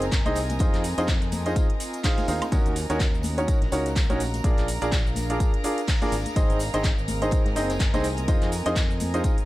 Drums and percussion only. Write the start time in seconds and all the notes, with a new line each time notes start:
0.02 snare, closed hi-hat, tambourine, shaker
0.12 kick, snare, clap, closed hi-hat, tambourine, shaker
0.25 closed hi-hat, high conga, shaker
0.35 open hi-hat, tambourine, shaker
0.49 closed hi-hat, tambourine, high conga, shaker
0.59 kick, closed hi-hat, tambourine, shaker
0.74 clap, closed hi-hat, shaker
0.84 open hi-hat, tambourine, shaker
0.98 snare, closed hi-hat, tambourine, shaker
1.08 kick, snare, clap, closed hi-hat, tambourine, shaker
1.22 closed hi-hat, shaker
1.32 open hi-hat, tambourine, high conga, shaker
1.46 closed hi-hat, tambourine, shaker
1.56 kick, closed hi-hat, tambourine, shaker
1.70 closed hi-hat
1.80 open hi-hat, tambourine, shaker
1.93 closed hi-hat, tambourine, shaker
2.04 kick, snare, clap, closed hi-hat, open hi-hat, shaker
2.18 closed hi-hat, high conga, shaker
2.28 open hi-hat, tambourine, shaker
2.41 closed hi-hat, tambourine, high conga, high woodblock, shaker
2.52 kick, closed hi-hat, tambourine, shaker
2.66 closed hi-hat, shaker
2.76 open hi-hat, tambourine, shaker
2.89 snare, closed hi-hat, tambourine, shaker
3.00 kick, snare, clap, closed hi-hat, tambourine, shaker
3.14 shaker
3.23 open hi-hat, tambourine, high conga, shaker
3.38 closed hi-hat, tambourine, shaker
3.48 kick, closed hi-hat, tambourine, shaker
3.62 snare, closed hi-hat
3.72 open hi-hat, tambourine, shaker
3.86 snare, closed hi-hat, tambourine, shaker
3.96 kick, snare, clap, closed hi-hat, tambourine, shaker
4.10 closed hi-hat, high conga, shaker
4.20 open hi-hat, tambourine, shaker
4.34 closed hi-hat, tambourine, high conga, shaker
4.44 kick, closed hi-hat, tambourine, shaker
4.58 clap, closed hi-hat, shaker
4.68 open hi-hat, tambourine, shaker
4.81 snare, closed hi-hat, tambourine, shaker
4.92 kick, snare, clap, closed hi-hat, tambourine, shaker
5.07 shaker
5.16 open hi-hat, tambourine, high conga, shaker
5.30 closed hi-hat, tambourine, shaker
5.40 kick, closed hi-hat, tambourine, shaker
5.54 closed hi-hat
5.64 open hi-hat, tambourine, shaker
5.78 closed hi-hat, tambourine, shaker
5.88 kick, snare, clap, closed hi-hat, open hi-hat, shaker
6.02 closed hi-hat, high conga, shaker
6.12 open hi-hat, tambourine, shaker
6.26 closed hi-hat, tambourine, high conga, shaker
6.36 kick, closed hi-hat, tambourine, shaker
6.50 closed hi-hat, shaker
6.59 open hi-hat, tambourine, shaker
6.73 snare, closed hi-hat, tambourine, shaker
6.84 kick, snare, clap, closed hi-hat, tambourine, shaker
6.98 shaker
7.08 open hi-hat, tambourine, high conga, shaker
7.22 closed hi-hat, tambourine, shaker
7.31 kick, closed hi-hat, tambourine, shaker
7.46 snare, closed hi-hat
7.56 snare, open hi-hat, tambourine, shaker
7.70 snare, closed hi-hat, tambourine, shaker
7.80 kick, snare, clap, closed hi-hat, tambourine, shaker
7.94 snare, closed hi-hat, tambourine, high conga, shaker
8.04 open hi-hat, tambourine, shaker
8.17 closed hi-hat, tambourine, high conga, shaker
8.28 kick, closed hi-hat, tambourine, shaker
8.42 clap, closed hi-hat, shaker
8.52 open hi-hat, tambourine, shaker
8.65 snare, closed hi-hat, tambourine, shaker
8.75 kick, snare, clap, closed hi-hat, tambourine, shaker
8.90 shaker
9.00 open hi-hat, tambourine, high conga, shaker
9.14 closed hi-hat, tambourine, shaker
9.24 kick, closed hi-hat, tambourine, shaker
9.38 closed hi-hat, shaker